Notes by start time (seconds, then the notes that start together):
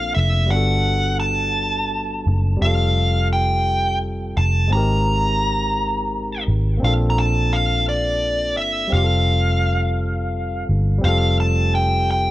Already playing: A#1 A#3 C4 D4 F4 A4 F5
0.15 F1 E5
0.46 G3 B3
0.50 G1 D4 F#4 F#5
0.56 A4
1.20 A5
2.27 F#1
2.57 G3 C4
2.62 F1 F4 G4 F5
2.67 A4
3.33 G5
4.37 F1 A5
4.68 G#3 C4
4.72 G#1 D#4 G4 A#5
4.77 A#4
6.48 G#1
6.77 A#3 C4
6.82 A#1 D4 F4 F5
6.87 A4
7.10 A#5
7.19 A5
7.53 F5
7.89 D5
8.57 G1 E5
8.87 G3 C4
8.93 F1 F4 G4 F5
8.97 G4
9.04 A4
10.69 G1
10.98 G3 C4
11.04 F1 F4 G4 F5
11.08 A4
11.40 A5
11.75 G5
12.11 G5